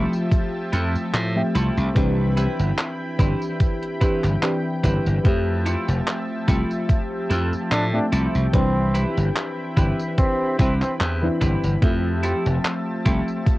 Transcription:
Already playing: F3 A3 C4 E4 F4 G4 A4 E5 G5 A5
0.13 tambourine
0.31 kick, closed hi-hat, tambourine
0.72 F2 E4 F4 G4 A4, closed hi-hat, tambourine
0.95 muted slap bass stroke, tambourine
1.14 A2, clap, closed hi-hat, tambourine
1.36 F3 A3 C4 G4 E5
1.55 C2 E4 F4 G4 A4, closed hi-hat, tambourine
1.77 C2, tambourine
1.94 C2 E3 C4 D4 E4 G4 B4 B5, kick, closed hi-hat, tambourine
2.37 C4 E4 G4 B4, closed hi-hat, tambourine
2.60 G1, tambourine
2.78 clap, closed hi-hat, tambourine
3.19 G1 E3 C4 D4 E4 G4 B4, kick, closed hi-hat, tambourine
3.42 tambourine
3.60 kick, closed hi-hat, tambourine
3.83 closed hi-hat
4.00 E3 C4 D4 E4 G4 B4, kick, closed hi-hat, tambourine
4.24 G1, clap, tambourine
4.42 E3 C4 D4 G4 B4, clap, closed hi-hat, tambourine
4.83 G1 E3 C4 D4 E4 G4 B4, kick, closed hi-hat, tambourine
5.06 G1, tambourine
5.23 F2 F3 A3 C4 G4 E5 A5, kick, closed hi-hat, tambourine
5.65 E4 F4 G4 A4, closed hi-hat, tambourine
5.88 F1, tambourine
6.07 clap, closed hi-hat, tambourine
6.47 C2 F3 A3 C4 E4 F4 G4 A4 E5, kick, closed hi-hat, tambourine
6.71 tambourine
6.89 kick, closed hi-hat, tambourine
7.30 F2 E4 F4 G4 A4, closed hi-hat, tambourine
7.53 muted slap bass stroke, tambourine
7.71 A2 D4, clap, closed hi-hat, tambourine
7.93 F3 A3 C4 D4 G4 E5
8.12 C2 E4 F4 G4 A4, closed hi-hat, tambourine
8.35 C2, tambourine
8.52 C2 E3 C4 D4 E4 G4 B4 B5, kick, closed hi-hat, tambourine
8.94 C4 E4 G4 B4, closed hi-hat, tambourine
9.17 G1, tambourine
9.36 clap, closed hi-hat, tambourine
9.76 G1 E3 C4 D4 E4 G4 B4, kick, closed hi-hat, tambourine
9.99 tambourine
10.18 C4, kick, closed hi-hat, tambourine
10.59 C2 C4 E4 G4 B4, kick, closed hi-hat, tambourine
10.82 C4, muted slap bass stroke, clap, tambourine
11.00 E2, clap, closed hi-hat, tambourine
11.22 E3 C4 D4 E4 B4
11.41 G1 C4 E4 G4 B4, kick, closed hi-hat, tambourine
11.64 G1, tambourine
11.81 F2 F3 A3 C4 G4 E5 A5, kick, closed hi-hat, tambourine
12.23 E4 F4 G4 A4, closed hi-hat, tambourine
12.46 F1, tambourine
12.65 clap, closed hi-hat, tambourine
13.05 C2 F3 A3 C4 E4 F4 G4 A4 E5, kick, closed hi-hat, tambourine
13.28 tambourine
13.47 kick, closed hi-hat, tambourine

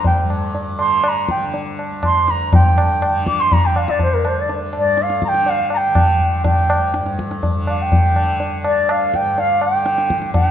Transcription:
Already playing: D2 G2 D3
0.04 G5, tabla tin, tabla ge
0.21 G2
0.30 tabla na
0.55 tabla tin
0.79 D3 C6, tabla na
1.04 C6, tabla na
1.08 A#5
1.29 G5, tabla ke
1.33 D3
1.54 tabla tin
1.79 tabla na
1.90 D2
2.03 C6, tabla na, tabla ge
2.28 A#5, tabla te
2.53 G2 G5, tabla tin, tabla ge
2.78 tabla na
3.02 tabla na
3.09 D3
3.27 D6, tabla ke
3.40 C6
3.52 A#5, tabla tin, tabla ge
3.65 D3 G5
3.76 F5, tabla na
3.88 D5, tabla ke
3.99 C5, tabla tin, tabla ge
4.13 A#4
4.22 D2, tabla na
4.27 C5
4.40 D5
4.49 tabla tin
4.73 G2, tabla na
4.78 D5
4.97 tabla te
5.02 F5
5.10 tabla te
5.22 A#5, tabla ke
5.28 D3 G5
5.34 tabla te
5.46 F5, tabla tin
5.70 A#5, tabla na
5.77 G5
5.88 D3
5.95 tabla na, tabla ge
6.20 tabla ge
6.43 D2 G5, tabla tin, tabla ge
6.70 tabla na
6.94 G2, tabla te
7.06 tabla te
7.19 tabla ke
7.31 tabla te
7.43 tabla tin, tabla ge
7.54 D3
7.67 F5, tabla na
7.81 G5
7.92 tabla tin, tabla ge
8.10 D3
8.16 tabla na
8.40 tabla tin
8.64 D2 D5, tabla na
8.89 F5, tabla na
9.14 G5, tabla ke
9.20 G2
9.38 F5, tabla tin
9.61 G5, tabla na
9.74 D3
9.86 tabla te
9.98 tabla te
10.10 tabla ke
10.22 tabla te
10.32 D3 F#5, tabla tin, tabla ge
10.47 G5

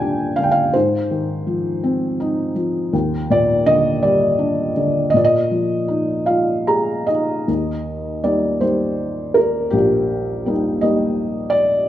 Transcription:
Already playing: D#2 A#2 D3 G3 G5 G#5
0.02 D4
0.36 D3 F5
0.43 G5
0.51 F5
0.73 G#2 C5
1.11 D#3
1.47 F3
1.84 C4
2.20 D#4
2.56 F3
2.93 D#2
3.30 A#2 D5
3.66 D3 D#5
4.02 G3 D5
4.39 D4
4.77 D3
5.10 A#2 D#5
5.16 D5
5.24 D#5
5.51 F3
5.88 D#4
6.26 F4 F5
6.67 G#4 A#5
7.07 D#4 D#5
7.48 D#2
8.23 G3 A#3 D#4 D5
8.61 G3 A#3 D#4 C5
9.34 A#4
9.70 A#1 G4
10.46 G3 A#3 D#4
10.81 G3 A#3 D#4 D#5
11.50 D5

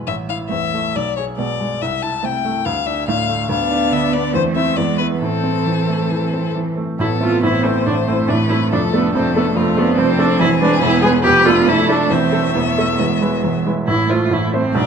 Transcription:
Already playing: E2 E4
0.07 A1 E5
0.29 E4 F5
0.49 E2 A3 C4 E5
0.74 A3
0.95 B1 D5
1.17 G#4 C#5
1.37 B2 G#3 B3 D5
1.60 G#3
1.82 C2 E5
2.02 E4 A5
2.23 C3 A3 C4 G5
2.45 A3
2.65 D2 F5
2.87 D4 E5
3.07 A2 A3 D4 F5
3.28 A3
3.49 D2 B3 D4 F5
3.71 D4
3.92 D3 E5
4.12 B3 D5
4.34 E2 A3 C4 C5
4.56 C4 E4 E5
4.77 E2 G#3 B3 D5
4.98 B3 E4 B4
5.21 A2 E3 C4 A4
5.43 C4
5.66 E3
5.89 A3
6.11 E3
6.33 C4
6.55 E3
6.77 A3
6.99 A1 A2 B3 E4 A4
7.20 A3 C4 E4 F4
7.43 A1 A2 E4 C5
7.64 A3 C4 E4
7.86 A1 A2 A3 D4
8.07 A3 C4 E4
8.28 A1 A2 D4 B4
8.49 A3 C4 E4
8.72 F1 F2 D4 A4
8.93 A3 B3 D4 A4
9.13 F1 F2 A3 C4 A4
9.36 A3 B3 D4 A4
9.56 F1 F2 A3 C4 F4
9.77 A3 B3 D4 A4
9.96 F1 F2 C4 A4
10.18 A3 D4 A4
10.40 E1 E2 E4 G#4
10.61 G#3 B3 D4 B4
10.81 E1 E2 B3 E4
11.01 G#3 B3 G#4 B4
11.23 F1 F2 B3 G4 B4
11.45 A3 D4 F4 A4
11.66 F1 F2 A3 E4 A4
11.89 A3 D4 A4
12.10 E1 E2 A3 C4 E5
12.32 A3 E4 A4
12.55 E1 E2 B3
12.78 A3 E4 A4
12.99 E1 E2 G#3
13.22 G#3 E4 B4
13.44 E1 E2
13.66 G#3 E4 B4
13.87 A1 A2 A3 E4
14.09 A3 E4 F4 C5
14.31 A1 A2 E4
14.52 A3 C4 E4 C5
14.74 B1 B2 G#3 D4 D5

